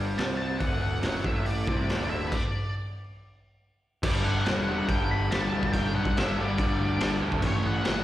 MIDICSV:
0, 0, Header, 1, 5, 480
1, 0, Start_track
1, 0, Tempo, 425834
1, 699, Time_signature, 4, 2, 24, 8
1, 9062, End_track
2, 0, Start_track
2, 0, Title_t, "Lead electric guitar"
2, 0, Program_c, 0, 29
2, 203, Note_on_c, 0, 81, 93
2, 270, Note_off_c, 0, 81, 0
2, 417, Note_on_c, 0, 81, 96
2, 660, Note_off_c, 0, 81, 0
2, 665, Note_on_c, 0, 78, 98
2, 908, Note_off_c, 0, 78, 0
2, 922, Note_on_c, 0, 78, 92
2, 1409, Note_on_c, 0, 76, 79
2, 1427, Note_off_c, 0, 78, 0
2, 1651, Note_off_c, 0, 76, 0
2, 1656, Note_on_c, 0, 74, 81
2, 1889, Note_off_c, 0, 74, 0
2, 1902, Note_on_c, 0, 74, 75
2, 2350, Note_off_c, 0, 74, 0
2, 2367, Note_on_c, 0, 76, 85
2, 2543, Note_off_c, 0, 76, 0
2, 2563, Note_on_c, 0, 71, 57
2, 2633, Note_off_c, 0, 71, 0
2, 2648, Note_on_c, 0, 74, 73
2, 3085, Note_off_c, 0, 74, 0
2, 4565, Note_on_c, 0, 74, 96
2, 4784, Note_on_c, 0, 78, 97
2, 4803, Note_off_c, 0, 74, 0
2, 5279, Note_off_c, 0, 78, 0
2, 5311, Note_on_c, 0, 78, 88
2, 5511, Note_off_c, 0, 78, 0
2, 5515, Note_on_c, 0, 79, 97
2, 5734, Note_off_c, 0, 79, 0
2, 5760, Note_on_c, 0, 83, 100
2, 5982, Note_on_c, 0, 81, 98
2, 5999, Note_off_c, 0, 83, 0
2, 6452, Note_off_c, 0, 81, 0
2, 6457, Note_on_c, 0, 79, 96
2, 6707, Note_off_c, 0, 79, 0
2, 6713, Note_on_c, 0, 78, 86
2, 6955, Note_off_c, 0, 78, 0
2, 6964, Note_on_c, 0, 76, 93
2, 7177, Note_off_c, 0, 76, 0
2, 7223, Note_on_c, 0, 74, 104
2, 8114, Note_off_c, 0, 74, 0
2, 8414, Note_on_c, 0, 73, 102
2, 8620, Note_off_c, 0, 73, 0
2, 8639, Note_on_c, 0, 78, 106
2, 9062, Note_off_c, 0, 78, 0
2, 9062, End_track
3, 0, Start_track
3, 0, Title_t, "Overdriven electric guitar"
3, 0, Program_c, 1, 29
3, 0, Note_on_c, 1, 43, 86
3, 0, Note_on_c, 1, 55, 100
3, 201, Note_off_c, 1, 43, 0
3, 205, Note_on_c, 1, 48, 86
3, 210, Note_off_c, 1, 55, 0
3, 218, Note_on_c, 1, 60, 115
3, 672, Note_off_c, 1, 48, 0
3, 677, Note_on_c, 1, 38, 79
3, 683, Note_off_c, 1, 60, 0
3, 688, Note_on_c, 1, 50, 88
3, 1162, Note_off_c, 1, 38, 0
3, 1168, Note_off_c, 1, 50, 0
3, 1169, Note_on_c, 1, 42, 84
3, 1183, Note_on_c, 1, 54, 109
3, 1409, Note_off_c, 1, 42, 0
3, 1414, Note_on_c, 1, 45, 92
3, 1415, Note_off_c, 1, 54, 0
3, 1432, Note_on_c, 1, 57, 87
3, 1892, Note_off_c, 1, 45, 0
3, 1901, Note_off_c, 1, 57, 0
3, 1917, Note_on_c, 1, 48, 89
3, 1923, Note_on_c, 1, 60, 98
3, 2142, Note_off_c, 1, 48, 0
3, 2146, Note_off_c, 1, 60, 0
3, 2146, Note_on_c, 1, 38, 85
3, 2162, Note_on_c, 1, 50, 99
3, 2619, Note_off_c, 1, 38, 0
3, 2627, Note_off_c, 1, 50, 0
3, 4558, Note_on_c, 1, 43, 98
3, 4584, Note_on_c, 1, 55, 95
3, 4585, Note_on_c, 1, 50, 97
3, 5026, Note_off_c, 1, 43, 0
3, 5030, Note_on_c, 1, 43, 73
3, 5032, Note_off_c, 1, 50, 0
3, 5046, Note_on_c, 1, 50, 87
3, 5054, Note_off_c, 1, 55, 0
3, 5059, Note_on_c, 1, 55, 91
3, 5269, Note_off_c, 1, 43, 0
3, 5273, Note_on_c, 1, 43, 83
3, 5274, Note_off_c, 1, 50, 0
3, 5288, Note_on_c, 1, 50, 88
3, 5298, Note_off_c, 1, 55, 0
3, 5302, Note_on_c, 1, 55, 92
3, 5490, Note_off_c, 1, 43, 0
3, 5497, Note_off_c, 1, 50, 0
3, 5503, Note_on_c, 1, 43, 95
3, 5509, Note_off_c, 1, 55, 0
3, 5510, Note_on_c, 1, 50, 102
3, 5522, Note_on_c, 1, 55, 98
3, 5972, Note_off_c, 1, 43, 0
3, 5986, Note_on_c, 1, 43, 93
3, 5989, Note_off_c, 1, 50, 0
3, 6001, Note_off_c, 1, 55, 0
3, 6003, Note_on_c, 1, 50, 82
3, 6015, Note_on_c, 1, 55, 104
3, 6213, Note_off_c, 1, 43, 0
3, 6214, Note_off_c, 1, 50, 0
3, 6226, Note_on_c, 1, 43, 94
3, 6228, Note_on_c, 1, 50, 88
3, 6230, Note_off_c, 1, 55, 0
3, 6244, Note_on_c, 1, 55, 102
3, 6466, Note_off_c, 1, 43, 0
3, 6473, Note_off_c, 1, 50, 0
3, 6479, Note_on_c, 1, 43, 95
3, 6486, Note_on_c, 1, 50, 103
3, 6488, Note_off_c, 1, 55, 0
3, 6502, Note_on_c, 1, 55, 95
3, 6935, Note_off_c, 1, 43, 0
3, 6943, Note_off_c, 1, 50, 0
3, 6948, Note_on_c, 1, 43, 85
3, 6956, Note_off_c, 1, 55, 0
3, 6957, Note_on_c, 1, 50, 84
3, 6969, Note_on_c, 1, 55, 88
3, 7177, Note_off_c, 1, 43, 0
3, 7190, Note_off_c, 1, 50, 0
3, 7190, Note_on_c, 1, 43, 92
3, 7200, Note_off_c, 1, 55, 0
3, 7204, Note_on_c, 1, 50, 88
3, 7214, Note_on_c, 1, 55, 86
3, 7410, Note_off_c, 1, 43, 0
3, 7423, Note_on_c, 1, 43, 107
3, 7425, Note_off_c, 1, 50, 0
3, 7430, Note_off_c, 1, 55, 0
3, 7439, Note_on_c, 1, 50, 109
3, 7444, Note_on_c, 1, 55, 102
3, 7865, Note_off_c, 1, 43, 0
3, 7879, Note_on_c, 1, 43, 93
3, 7880, Note_off_c, 1, 50, 0
3, 7888, Note_off_c, 1, 55, 0
3, 7894, Note_on_c, 1, 50, 86
3, 7902, Note_on_c, 1, 55, 96
3, 8101, Note_off_c, 1, 43, 0
3, 8105, Note_off_c, 1, 50, 0
3, 8115, Note_on_c, 1, 43, 102
3, 8118, Note_on_c, 1, 50, 100
3, 8121, Note_off_c, 1, 55, 0
3, 8134, Note_on_c, 1, 55, 101
3, 8350, Note_off_c, 1, 43, 0
3, 8353, Note_off_c, 1, 50, 0
3, 8355, Note_on_c, 1, 45, 86
3, 8362, Note_off_c, 1, 55, 0
3, 8374, Note_on_c, 1, 52, 93
3, 8375, Note_on_c, 1, 57, 104
3, 8822, Note_off_c, 1, 45, 0
3, 8827, Note_on_c, 1, 45, 81
3, 8835, Note_off_c, 1, 52, 0
3, 8840, Note_on_c, 1, 52, 89
3, 8842, Note_off_c, 1, 57, 0
3, 8847, Note_on_c, 1, 57, 100
3, 9062, Note_off_c, 1, 45, 0
3, 9062, Note_off_c, 1, 52, 0
3, 9062, Note_off_c, 1, 57, 0
3, 9062, End_track
4, 0, Start_track
4, 0, Title_t, "Picked electric bass"
4, 0, Program_c, 2, 34
4, 0, Note_on_c, 2, 31, 81
4, 166, Note_off_c, 2, 31, 0
4, 204, Note_on_c, 2, 36, 91
4, 658, Note_off_c, 2, 36, 0
4, 680, Note_on_c, 2, 26, 91
4, 1137, Note_off_c, 2, 26, 0
4, 1160, Note_on_c, 2, 30, 91
4, 1393, Note_off_c, 2, 30, 0
4, 1402, Note_on_c, 2, 33, 89
4, 1859, Note_off_c, 2, 33, 0
4, 1893, Note_on_c, 2, 36, 97
4, 2121, Note_off_c, 2, 36, 0
4, 2136, Note_on_c, 2, 26, 96
4, 2587, Note_off_c, 2, 26, 0
4, 4540, Note_on_c, 2, 31, 100
4, 4731, Note_off_c, 2, 31, 0
4, 4793, Note_on_c, 2, 31, 83
4, 4978, Note_off_c, 2, 31, 0
4, 5052, Note_on_c, 2, 28, 85
4, 5418, Note_off_c, 2, 28, 0
4, 5510, Note_on_c, 2, 31, 103
4, 5696, Note_off_c, 2, 31, 0
4, 5755, Note_on_c, 2, 31, 97
4, 5939, Note_off_c, 2, 31, 0
4, 5989, Note_on_c, 2, 31, 96
4, 6175, Note_off_c, 2, 31, 0
4, 6211, Note_on_c, 2, 26, 80
4, 6404, Note_off_c, 2, 26, 0
4, 6466, Note_on_c, 2, 31, 98
4, 6653, Note_off_c, 2, 31, 0
4, 6696, Note_on_c, 2, 35, 86
4, 6886, Note_off_c, 2, 35, 0
4, 6944, Note_on_c, 2, 31, 98
4, 7131, Note_off_c, 2, 31, 0
4, 7186, Note_on_c, 2, 31, 93
4, 7372, Note_off_c, 2, 31, 0
4, 7423, Note_on_c, 2, 31, 94
4, 7610, Note_off_c, 2, 31, 0
4, 7666, Note_on_c, 2, 38, 95
4, 7851, Note_off_c, 2, 38, 0
4, 7896, Note_on_c, 2, 31, 106
4, 8085, Note_off_c, 2, 31, 0
4, 8125, Note_on_c, 2, 38, 94
4, 8369, Note_off_c, 2, 38, 0
4, 8369, Note_on_c, 2, 33, 92
4, 8560, Note_off_c, 2, 33, 0
4, 8612, Note_on_c, 2, 33, 89
4, 8802, Note_off_c, 2, 33, 0
4, 8864, Note_on_c, 2, 31, 97
4, 9062, Note_off_c, 2, 31, 0
4, 9062, End_track
5, 0, Start_track
5, 0, Title_t, "Drums"
5, 204, Note_on_c, 9, 46, 55
5, 211, Note_on_c, 9, 38, 121
5, 317, Note_off_c, 9, 46, 0
5, 324, Note_off_c, 9, 38, 0
5, 682, Note_on_c, 9, 36, 118
5, 683, Note_on_c, 9, 46, 61
5, 795, Note_off_c, 9, 36, 0
5, 795, Note_off_c, 9, 46, 0
5, 1155, Note_on_c, 9, 46, 60
5, 1162, Note_on_c, 9, 38, 113
5, 1268, Note_off_c, 9, 46, 0
5, 1275, Note_off_c, 9, 38, 0
5, 1403, Note_on_c, 9, 36, 102
5, 1516, Note_off_c, 9, 36, 0
5, 1643, Note_on_c, 9, 46, 50
5, 1756, Note_off_c, 9, 46, 0
5, 1887, Note_on_c, 9, 36, 108
5, 2000, Note_off_c, 9, 36, 0
5, 2134, Note_on_c, 9, 46, 52
5, 2141, Note_on_c, 9, 38, 110
5, 2247, Note_off_c, 9, 46, 0
5, 2254, Note_off_c, 9, 38, 0
5, 2615, Note_on_c, 9, 36, 119
5, 2619, Note_on_c, 9, 49, 98
5, 2728, Note_off_c, 9, 36, 0
5, 2732, Note_off_c, 9, 49, 0
5, 4543, Note_on_c, 9, 49, 127
5, 4543, Note_on_c, 9, 57, 77
5, 4545, Note_on_c, 9, 36, 121
5, 4655, Note_off_c, 9, 49, 0
5, 4655, Note_off_c, 9, 57, 0
5, 4658, Note_off_c, 9, 36, 0
5, 5027, Note_on_c, 9, 57, 64
5, 5033, Note_on_c, 9, 38, 127
5, 5139, Note_off_c, 9, 57, 0
5, 5146, Note_off_c, 9, 38, 0
5, 5508, Note_on_c, 9, 36, 114
5, 5511, Note_on_c, 9, 57, 61
5, 5620, Note_off_c, 9, 36, 0
5, 5624, Note_off_c, 9, 57, 0
5, 5992, Note_on_c, 9, 57, 58
5, 5999, Note_on_c, 9, 38, 116
5, 6105, Note_off_c, 9, 57, 0
5, 6111, Note_off_c, 9, 38, 0
5, 6345, Note_on_c, 9, 36, 84
5, 6458, Note_off_c, 9, 36, 0
5, 6465, Note_on_c, 9, 36, 112
5, 6471, Note_on_c, 9, 57, 73
5, 6578, Note_off_c, 9, 36, 0
5, 6584, Note_off_c, 9, 57, 0
5, 6824, Note_on_c, 9, 36, 87
5, 6937, Note_off_c, 9, 36, 0
5, 6956, Note_on_c, 9, 57, 73
5, 6962, Note_on_c, 9, 38, 127
5, 7068, Note_off_c, 9, 57, 0
5, 7075, Note_off_c, 9, 38, 0
5, 7422, Note_on_c, 9, 36, 113
5, 7429, Note_on_c, 9, 57, 66
5, 7535, Note_off_c, 9, 36, 0
5, 7541, Note_off_c, 9, 57, 0
5, 7896, Note_on_c, 9, 57, 71
5, 7903, Note_on_c, 9, 38, 115
5, 8009, Note_off_c, 9, 57, 0
5, 8015, Note_off_c, 9, 38, 0
5, 8251, Note_on_c, 9, 36, 87
5, 8363, Note_off_c, 9, 36, 0
5, 8366, Note_on_c, 9, 57, 72
5, 8368, Note_on_c, 9, 36, 104
5, 8479, Note_off_c, 9, 57, 0
5, 8481, Note_off_c, 9, 36, 0
5, 8846, Note_on_c, 9, 57, 63
5, 8853, Note_on_c, 9, 38, 112
5, 8959, Note_off_c, 9, 57, 0
5, 8966, Note_off_c, 9, 38, 0
5, 9062, End_track
0, 0, End_of_file